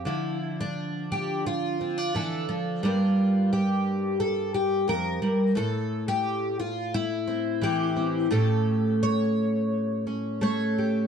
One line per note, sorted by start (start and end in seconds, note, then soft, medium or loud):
0.05 2.79 D3 medium
0.05 2.14 F3 soft
0.05 0.59 E4 medium
0.61 1.80 D4 medium
1.12 1.46 G4 medium
1.46 2.15 F4 medium
1.81 1.98 C4 soft
1.98 2.83 D4 soft
2.15 2.48 E3 medium
2.15 2.83 A4 medium
2.49 2.83 F3 medium
2.83 4.87 G2 medium
2.83 5.51 G3 soft
2.83 5.52 A#3 soft
2.83 5.52 D4 soft
2.83 3.52 F4 medium
3.53 4.20 G4 medium
4.20 4.54 A4 medium
4.54 4.88 G4 medium
4.88 5.21 F2 medium
4.88 5.56 A#4 medium
5.22 5.55 G2 medium
5.55 8.27 A2 medium
5.55 6.07 A4 medium
6.08 6.59 G4 medium
6.60 6.93 F4 medium
6.94 8.32 E4 medium
7.27 7.95 C4 soft
7.61 8.27 E3 medium
7.61 8.32 G4 medium
7.96 8.27 C4 soft
8.31 11.07 A2 medium
8.31 10.40 A3 soft
8.31 10.05 C#4 soft
8.31 10.77 G4 soft
8.31 9.02 A4 medium
9.03 10.42 C#5 loud
10.07 11.07 C#4 soft
10.41 11.07 A3 medium
10.41 11.07 C#5 medium
10.78 11.07 G4 soft